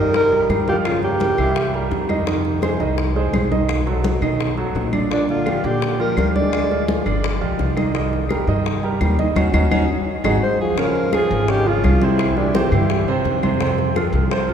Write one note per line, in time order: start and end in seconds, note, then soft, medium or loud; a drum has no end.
0.00 0.46 G2 medium
0.00 0.26 D#3 medium
0.00 0.15 G3 medium
0.00 0.26 D#4 medium
0.00 0.15 A#4 loud
0.00 0.26 D#5 medium
0.14 0.48 G3 medium
0.14 0.48 A#4 loud
0.14 high bongo medium
0.14 high conga soft
0.32 0.47 G3 medium
0.32 0.47 G4 medium
0.32 0.47 A#4 medium
0.32 high conga soft
0.49 1.33 G2 medium
0.49 0.65 G3 medium
0.49 0.65 G4 medium
0.49 0.65 A#4 medium
0.49 high bongo soft
0.49 low bongo medium
0.49 high conga medium
0.49 claves medium
0.68 0.76 D#3 medium
0.68 0.97 F3 medium
0.68 0.97 F4 medium
0.68 0.77 G4 medium
0.68 0.97 F5 medium
0.68 high bongo soft
0.68 high conga medium
0.85 1.02 C#3 medium
0.85 1.02 F4 medium
0.85 high bongo medium
0.85 high conga soft
0.85 claves medium
1.02 1.53 C#3 medium
1.02 1.32 A#3 medium
1.02 2.06 G4 medium
1.02 1.32 A#4 medium
1.02 1.33 C#5 medium
1.02 high bongo soft
1.02 high conga soft
1.20 high bongo medium
1.20 high conga medium
1.38 1.88 C2 medium
1.38 1.68 E3 medium
1.38 1.68 E4 medium
1.38 1.68 E5 medium
1.38 high bongo soft
1.38 high conga soft
1.38 claves medium
1.56 high bongo medium
1.56 high conga soft
1.74 2.03 G3 medium
1.74 2.03 G4 medium
1.74 2.04 A#4 medium
1.74 high conga soft
1.91 2.74 F2 medium
1.91 high bongo soft
1.91 low bongo medium
1.91 high conga soft
2.09 2.24 D#3 medium
2.09 2.25 D#4 medium
2.09 2.25 D#5 medium
2.09 high bongo soft
2.09 high conga medium
2.09 claves medium
2.27 2.56 D#3 medium
2.27 2.56 D#4 medium
2.27 2.57 D#5 medium
2.27 high bongo medium
2.27 high conga soft
2.45 high bongo soft
2.45 high conga soft
2.62 2.77 G#3 medium
2.62 2.77 G#4 medium
2.62 2.78 C5 medium
2.62 high bongo medium
2.62 high conga medium
2.62 claves medium
2.80 3.30 C2 medium
2.80 3.09 D#3 medium
2.80 3.09 D#4 medium
2.80 3.10 D#5 medium
2.80 high bongo soft
2.98 high bongo medium
2.98 high conga soft
3.16 3.31 G#3 medium
3.16 3.31 G#4 medium
3.16 3.31 C5 medium
3.16 high conga soft
3.33 4.16 B1 medium
3.33 3.48 G#3 medium
3.33 3.48 G#4 medium
3.33 3.49 C5 medium
3.33 high bongo soft
3.33 low bongo medium
3.33 high conga medium
3.33 claves medium
3.51 3.80 D#3 medium
3.51 3.81 D#4 medium
3.51 3.81 D#5 medium
3.51 high bongo soft
3.51 high conga medium
3.69 high bongo medium
3.69 claves medium
3.87 4.16 F#3 medium
3.87 4.16 F#4 medium
3.87 4.16 A4 medium
3.87 high bongo soft
3.87 high conga soft
4.04 high bongo medium
4.04 high conga medium
4.22 4.72 B2 medium
4.22 4.51 D#3 medium
4.22 4.52 D#4 medium
4.22 4.52 D#5 medium
4.22 high bongo soft
4.22 high conga soft
4.22 claves medium
4.40 high bongo medium
4.40 high conga soft
4.57 4.87 F#3 medium
4.57 4.87 F#4 medium
4.57 4.87 A4 medium
4.57 high conga soft
4.75 5.58 A#2 medium
4.75 high bongo soft
4.75 low bongo medium
4.75 high conga soft
4.93 5.07 D3 medium
4.93 5.08 D4 medium
4.93 5.08 D5 medium
4.93 high bongo soft
4.93 high conga medium
4.93 claves medium
5.10 5.28 A#2 medium
5.10 5.40 D3 medium
5.10 5.40 D4 medium
5.10 5.29 D4 medium
5.10 5.40 D5 medium
5.10 high bongo medium
5.10 high conga soft
5.29 5.64 D3 medium
5.29 5.67 F4 medium
5.29 high bongo soft
5.29 high conga soft
5.46 5.61 F3 medium
5.46 5.61 F4 medium
5.46 5.61 G4 medium
5.46 high bongo medium
5.46 high conga soft
5.46 claves medium
5.64 6.14 A#2 medium
5.64 5.99 D3 medium
5.64 5.93 D3 medium
5.64 5.93 D4 medium
5.64 6.00 G4 medium
5.64 5.94 D5 medium
5.64 high bongo soft
5.82 high bongo medium
5.82 high conga soft
5.99 6.14 F3 medium
5.99 6.16 G3 medium
5.99 6.14 F4 medium
5.99 6.14 G4 medium
5.99 6.17 A#4 medium
5.99 high conga soft
6.17 7.00 D2 medium
6.17 6.32 F3 medium
6.17 6.28 G3 medium
6.17 6.32 F4 medium
6.17 6.32 G4 medium
6.17 6.29 A#4 medium
6.17 high bongo soft
6.17 low bongo medium
6.17 high conga medium
6.17 claves medium
6.35 6.64 D3 medium
6.35 7.03 G#3 medium
6.35 6.64 D4 medium
6.35 7.02 D5 medium
6.35 6.65 D5 medium
6.35 high bongo soft
6.35 high conga medium
6.53 high bongo medium
6.53 high conga soft
6.53 claves medium
6.70 7.00 F3 medium
6.70 7.00 F4 medium
6.70 7.00 G#4 medium
6.70 high bongo soft
6.70 high conga soft
6.88 high bongo medium
6.88 high conga medium
7.06 7.39 G1 medium
7.06 7.35 D3 medium
7.06 7.35 D4 medium
7.06 7.35 D5 medium
7.06 high bongo soft
7.06 high conga soft
7.06 claves medium
7.24 high bongo medium
7.24 high conga soft
7.41 7.58 B1 medium
7.41 7.70 F3 medium
7.41 7.71 F4 medium
7.41 7.71 G4 medium
7.41 high conga soft
7.59 8.42 C2 medium
7.59 high bongo soft
7.59 low bongo medium
7.59 high conga soft
7.77 7.91 D#3 medium
7.77 7.91 D#4 medium
7.77 7.92 D#5 medium
7.77 high bongo soft
7.77 high conga medium
7.77 claves medium
7.94 8.23 D#3 medium
7.94 8.24 D#4 medium
7.94 8.24 D#5 medium
7.94 high bongo medium
7.94 high conga soft
8.13 high bongo soft
8.13 high conga soft
8.29 8.45 G3 medium
8.29 8.45 G4 medium
8.29 8.45 A#4 medium
8.29 high bongo medium
8.29 high conga medium
8.29 claves medium
8.47 8.97 G2 medium
8.47 8.77 D#3 medium
8.47 8.77 D#4 medium
8.47 8.77 D#5 medium
8.47 high bongo soft
8.66 high bongo medium
8.66 high conga soft
8.83 8.98 G3 medium
8.83 8.98 G4 medium
8.83 8.98 A#4 medium
8.83 high conga soft
9.01 9.34 D#2 medium
9.01 9.16 G3 medium
9.01 9.16 G4 medium
9.01 9.16 A#4 medium
9.01 high bongo soft
9.01 low bongo medium
9.01 high conga medium
9.01 claves medium
9.19 9.33 D#3 medium
9.19 9.34 D#4 medium
9.19 9.34 D#5 medium
9.19 high bongo soft
9.19 high conga medium
9.36 9.49 D#2 medium
9.36 9.48 C#4 medium
9.36 9.48 D#4 medium
9.36 9.48 F#4 medium
9.36 low bongo medium
9.36 high conga loud
9.36 claves medium
9.53 9.67 D#2 medium
9.53 9.65 C#4 medium
9.53 9.65 D#4 medium
9.53 9.65 F#4 medium
9.53 low bongo medium
9.53 high conga loud
9.53 claves loud
9.71 9.85 D#2 medium
9.71 9.83 C#4 loud
9.71 9.83 D#4 loud
9.71 9.83 F#4 loud
9.71 low bongo medium
9.71 high conga medium
9.71 claves loud
10.24 10.38 G#1 loud
10.24 10.36 D#4 loud
10.24 10.36 F#4 loud
10.24 10.36 G#4 medium
10.24 low bongo medium
10.24 high conga medium
10.24 claves loud
10.43 10.59 G#3 medium
10.43 10.59 C5 loud
10.60 10.78 F3 medium
10.60 10.80 G#4 medium
10.77 11.07 C#3 medium
10.77 11.13 F3 medium
10.77 11.07 C#4 medium
10.77 11.16 A#4 loud
10.77 11.07 C#5 medium
10.77 high bongo medium
10.77 high conga soft
10.95 high bongo soft
10.95 high conga soft
11.13 11.42 F3 medium
11.13 11.50 F3 medium
11.13 11.43 F4 medium
11.13 11.43 G#4 medium
11.13 11.51 G#4 loud
11.13 high bongo medium
11.13 high conga medium
11.13 claves medium
11.31 11.80 G#1 medium
11.31 high bongo soft
11.48 11.63 C#3 medium
11.48 11.68 D#3 medium
11.48 11.63 C#4 medium
11.48 11.69 G4 loud
11.48 11.63 C#5 medium
11.48 high bongo medium
11.48 high conga soft
11.66 12.03 C#3 medium
11.66 11.95 F3 medium
11.66 11.96 F4 medium
11.66 12.05 F4 medium
11.66 11.96 G#4 medium
11.66 high conga soft
11.84 12.66 C2 medium
11.84 high bongo soft
11.84 low bongo medium
11.84 high conga medium
11.84 claves medium
12.02 12.39 C3 medium
12.02 12.31 C3 medium
12.02 12.31 C4 medium
12.02 12.39 E4 medium
12.02 12.31 C5 medium
12.02 high bongo soft
12.02 high conga medium
12.19 high bongo medium
12.19 high conga soft
12.19 claves medium
12.37 12.57 A#2 medium
12.37 12.51 E3 medium
12.37 12.58 D4 medium
12.37 12.52 E4 medium
12.37 12.52 G4 medium
12.37 high bongo soft
12.37 high conga soft
12.55 12.69 C3 medium
12.55 13.08 E3 medium
12.55 12.69 C4 medium
12.55 13.08 G4 medium
12.55 12.69 C5 medium
12.55 high bongo medium
12.55 high conga medium
12.72 13.21 G2 loud
12.72 13.01 E3 medium
12.72 13.02 E4 medium
12.72 13.02 G4 medium
12.72 high bongo soft
12.72 high conga soft
12.72 low conga medium
12.72 claves medium
12.90 high bongo medium
12.90 high conga soft
13.08 13.37 C3 medium
13.08 13.37 C4 loud
13.08 13.37 C5 medium
13.08 high conga soft
13.24 14.07 F2 medium
13.24 high bongo soft
13.24 low bongo medium
13.24 high conga soft
13.43 13.57 C3 medium
13.43 13.58 C4 medium
13.43 13.58 C5 medium
13.43 high bongo soft
13.43 high conga medium
13.43 claves medium
13.61 13.90 C3 medium
13.61 13.90 C4 medium
13.61 13.90 C5 medium
13.61 high bongo medium
13.61 high conga soft
13.78 high bongo soft
13.78 high conga soft
13.96 14.25 F3 medium
13.96 14.25 F4 medium
13.96 14.25 A4 medium
13.96 high bongo medium
13.96 high conga medium
13.96 claves medium
14.13 14.54 C2 medium
14.13 high bongo soft
14.31 14.46 C3 medium
14.31 14.46 C4 medium
14.31 14.46 C5 medium
14.31 high bongo medium
14.31 high conga soft
14.48 14.54 F3 medium
14.48 14.54 F4 medium
14.48 14.54 A4 medium
14.48 high conga soft